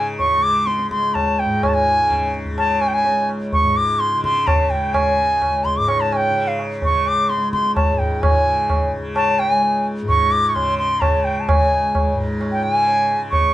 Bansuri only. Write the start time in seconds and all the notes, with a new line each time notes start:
0.19 C#6
0.43 D6
0.66 C6
0.91 C6
1.14 A5
1.39 G5
1.63 G#5
1.68 A5
1.74 G#5
2.58 A5
2.81 G#5
2.88 G5
2.94 G#5
3.53 C#6
3.77 D6
3.99 C6
4.24 C6
4.47 A5
4.70 G5
4.94 G#5
5.65 C6
5.77 D6
5.89 C#6
6.01 A5
6.13 G5 G#5
6.48 F5
6.85 C#6
7.08 D6
7.29 C6
7.52 C6
7.76 A5
7.98 G5
8.22 G#5
9.16 A5
9.39 G5
9.51 G#5
10.09 C#6
10.32 D6
10.49 C#6
10.55 C6
10.78 C6
11.01 A5
11.24 G5
11.40 A5
11.48 G#5
12.52 G5
12.63 G#5
13.31 C#6